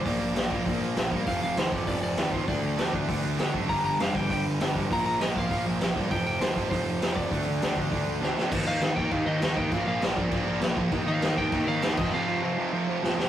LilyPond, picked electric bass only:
\new Staff \with { instrumentName = "Picked electric bass" } { \clef bass \time 4/4 \key f \mixolydian \tempo 4 = 199 bes,,8 bes,,8 bes,,8 bes,,8 bes,,8 bes,,8 bes,,8 g,8 | f,,8 f,,8 ees,8 f,,8 f,,8 f,,8 ees,4 | d,8 d,8 d,8 d,8 d,8 d,8 d,8 fis,,8 | g,,8 g,,8 f,,8 g,,8 g,,8 g,,8 g,,4 |
bes,,8 bes,,8 bes,,8 bes,,8 bes,,8 bes,,8 bes,,8 g,8 | f,,8 f,,8 ees,8 f,,8 f,,8 f,,8 f,,4 | d,8 d,8 d,8 d,8 d,8 d,8 d,8 c8 | ees,8 ees,8 ees,8 ees,8 ees,8 ees,8 ees,8 ees,8 |
bes,,8 bes,,8 bes,,8 bes,,8 bes,,8 bes,,8 bes,,8 bes,,8 | ees,8 ees,8 ees,8 ees,8 ees,8 ees,8 ees,8 f,,8 | r1 | }